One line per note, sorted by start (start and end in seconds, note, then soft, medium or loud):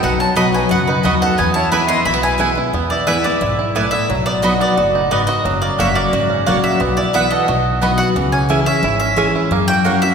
0.00 0.28 B1 loud
0.00 0.67 B2 medium
0.00 0.71 B3 medium
0.00 0.50 D#4 medium
0.00 0.17 A4 medium
0.00 0.19 B4 medium
0.00 0.20 F#5 medium
0.19 0.35 C#5 medium
0.19 0.36 A5 loud
0.36 0.66 B1 medium
0.36 0.53 F#3 medium
0.36 0.84 F#3 medium
0.36 0.46 B3 medium
0.36 0.53 B3 loud
0.36 0.53 D#4 medium
0.36 0.46 F#4 medium
0.36 0.51 F#4 medium
0.36 0.53 D#5 medium
0.36 0.46 D#5 loud
0.36 0.53 B5 loud
0.36 0.46 B5 loud
0.52 0.70 D#4 medium
0.52 0.69 F#4 medium
0.52 1.01 F#4 medium
0.52 0.69 B4 medium
0.52 0.70 G#5 medium
0.69 0.99 C#2 medium
0.69 1.34 F#2 medium
0.69 1.05 B3 medium
0.69 0.86 B4 medium
0.69 0.87 F#5 loud
0.87 1.03 D#4 medium
0.87 1.21 D#4 medium
0.87 1.04 B4 medium
1.03 1.33 D#2 medium
1.03 1.36 F#3 medium
1.03 1.36 B3 medium
1.03 1.13 B3 medium
1.03 1.39 B3 medium
1.03 1.37 D#4 medium
1.03 1.13 F#4 loud
1.03 1.37 F#4 medium
1.03 1.21 F#4 medium
1.03 1.14 D#5 loud
1.03 1.21 D#5 medium
1.03 1.14 B5 loud
1.21 1.39 D#4 medium
1.21 1.37 A4 medium
1.21 1.38 F#5 loud
1.38 2.02 E2 medium
1.38 1.88 E2 medium
1.38 1.86 B3 medium
1.38 1.54 B4 medium
1.38 1.54 G#5 medium
1.54 1.89 E4 medium
1.54 1.71 C#5 medium
1.54 1.71 A5 loud
1.71 1.88 E3 medium
1.71 2.20 E3 medium
1.71 1.88 G#3 medium
1.71 1.81 B3 medium
1.71 1.88 B3 loud
1.71 1.81 E4 medium
1.71 1.87 E4 medium
1.71 1.81 B4 loud
1.71 1.87 E5 medium
1.71 1.82 G#5 loud
1.71 1.88 B5 medium
1.88 2.06 B3 medium
1.88 2.05 E4 medium
1.88 2.22 E4 medium
1.88 2.04 D#5 loud
1.88 2.05 C6 loud
2.05 2.55 B1 medium
2.05 2.70 B2 medium
2.05 2.13 A3 medium
2.05 2.21 E5 medium
2.05 2.22 B5 medium
2.13 2.40 B3 medium
2.23 2.39 E4 medium
2.23 2.39 B4 medium
2.23 2.33 G#5 loud
2.38 2.55 E3 medium
2.38 2.56 G#3 medium
2.38 2.56 B3 medium
2.38 2.49 B3 medium
2.38 2.54 E4 medium
2.38 2.49 E4 medium
2.38 2.57 E4 medium
2.38 2.49 B4 loud
2.38 2.49 G#5 loud
2.55 2.73 B3 medium
2.55 2.72 E4 medium
2.55 2.74 E4 medium
2.73 3.23 E2 medium
2.73 3.38 E2 medium
2.73 3.93 B3 medium
2.90 3.07 E4 medium
2.90 3.07 D5 medium
3.07 3.24 E3 medium
3.07 3.24 G#3 medium
3.07 3.16 B3 medium
3.07 3.24 B3 medium
3.07 3.17 E4 loud
3.07 3.24 E4 medium
3.07 3.17 B4 loud
3.07 3.24 E5 medium
3.07 3.17 G#5 loud
3.24 3.42 B3 soft
3.24 3.41 E4 medium
3.24 3.72 D5 medium
3.41 3.91 B1 medium
3.41 3.74 G#2 medium
3.41 3.58 E4 medium
3.59 3.75 E4 medium
3.75 4.08 A2 medium
3.75 3.84 B3 medium
3.75 3.85 E4 medium
3.75 4.10 E4 medium
3.75 3.85 B4 loud
3.75 3.92 D5 medium
3.75 3.85 G#5 medium
3.91 4.10 B3 medium
3.91 4.08 E5 loud
4.09 4.59 B1 medium
4.09 4.74 B2 medium
4.09 5.45 F#3 medium
4.26 4.59 B3 medium
4.26 4.42 D5 loud
4.42 4.75 F#3 medium
4.42 4.52 B3 loud
4.42 4.76 B3 medium
4.42 4.76 D#4 medium
4.42 4.77 F#4 medium
4.42 4.53 F#4 medium
4.42 4.76 F#4 loud
4.42 4.60 D#5 medium
4.42 4.53 D#5 loud
4.42 4.53 B5 loud
4.61 5.08 B3 medium
4.61 5.08 D5 medium
4.77 5.27 F#1 medium
4.77 5.10 A2 medium
4.77 5.28 F#4 medium
4.95 5.42 D#4 medium
5.11 5.43 G#2 medium
5.11 5.20 B3 medium
5.11 5.45 B3 medium
5.11 5.21 F#4 loud
5.11 5.26 D5 medium
5.11 5.21 D#5 loud
5.11 5.21 B5 loud
5.27 5.79 F#4 medium
5.27 5.44 D#5 loud
5.45 5.70 F#1 loud
5.45 6.10 F#2 medium
5.45 6.85 F#3 medium
5.62 5.95 A#3 medium
5.62 5.78 D5 medium
5.78 6.08 F#1 medium
5.78 6.12 F#3 medium
5.78 5.88 A#3 loud
5.78 6.12 A#3 medium
5.78 6.12 C#4 medium
5.78 5.88 F#4 loud
5.78 6.12 F#4 medium
5.78 6.13 F#4 medium
5.78 5.88 C#5 medium
5.78 5.96 E5 medium
5.78 5.88 F#5 loud
5.95 6.43 A#3 medium
5.95 6.43 D5 medium
6.12 6.41 G#1 medium
6.12 6.77 C#3 loud
6.12 6.61 F#4 medium
6.30 6.77 C#4 medium
6.46 6.76 A#1 medium
6.46 6.79 F#3 medium
6.46 6.56 A#3 medium
6.46 6.80 A#3 medium
6.46 6.79 A#3 medium
6.46 6.79 C#4 loud
6.46 6.56 F#4 medium
6.46 6.80 F#4 loud
6.46 6.56 C#5 medium
6.46 6.63 D5 medium
6.46 6.56 F#5 loud
6.64 6.81 F#4 medium
6.64 6.80 E5 medium
6.80 7.30 B1 loud
6.80 7.45 B2 medium
6.80 7.14 B3 medium
6.97 7.45 E4 medium
6.97 7.14 D5 medium
7.13 7.46 E3 medium
7.13 7.23 B3 medium
7.13 7.47 B3 medium
7.13 7.48 B3 medium
7.13 7.24 E4 loud
7.13 7.47 E4 medium
7.13 7.47 F#4 medium
7.13 7.24 B4 loud
7.13 7.31 E5 loud
7.13 7.24 F#5 loud
7.31 7.49 A4 medium
7.31 7.78 D#5 medium
7.48 7.98 B1 medium
7.48 8.13 B2 medium
7.48 7.96 F#4 medium
7.81 8.14 F#3 loud
7.81 7.91 B3 medium
7.81 8.16 B3 medium
7.81 8.15 B3 medium
7.81 8.15 D#4 medium
7.81 7.91 F#4 medium
7.81 8.15 F#4 loud
7.81 7.91 D#5 loud
7.81 7.99 D#5 medium
7.81 7.91 B5 loud
7.98 8.16 F#4 medium
7.98 8.08 F#5 medium
8.15 8.65 C#2 loud
8.15 8.80 C#3 medium
8.15 8.64 E3 medium
8.32 8.67 C#4 medium
8.32 8.64 G#5 medium
8.49 8.82 E3 medium
8.49 8.82 G#3 medium
8.49 8.59 C#4 medium
8.49 8.82 C#4 medium
8.49 8.82 E4 loud
8.49 8.83 E4 medium
8.49 8.59 G#4 loud
8.49 8.59 E5 loud
8.49 8.59 G#5 loud
8.66 9.00 C#4 medium
8.66 8.98 E5 loud
8.83 9.33 G#1 medium
8.83 9.48 G#2 medium
8.83 9.31 E4 medium
9.00 9.16 C#4 medium
9.00 9.32 E5 loud
9.16 9.49 E3 medium
9.16 9.49 G#3 loud
9.16 9.26 C#4 medium
9.16 9.50 C#4 medium
9.16 9.52 C#4 medium
9.16 9.50 E4 loud
9.16 9.26 G#4 loud
9.16 9.27 E5 loud
9.16 9.27 G#5 loud
9.36 9.52 E4 medium
9.50 10.00 F#2 medium
9.50 10.14 F#2 medium
9.50 9.84 A#3 medium
9.68 10.02 F#4 medium
9.68 10.00 G5 loud
9.84 10.01 F#3 medium
9.84 9.94 A#3 loud
9.84 10.02 A#3 medium
9.84 10.14 A#3 medium
9.84 10.02 C#4 medium
9.84 9.94 F#4 loud
9.84 10.01 F#4 loud
9.84 9.94 C#5 medium
9.84 9.95 F#5 loud
10.02 10.14 C#4 medium
10.02 10.14 F#4 medium
10.02 10.14 E5 loud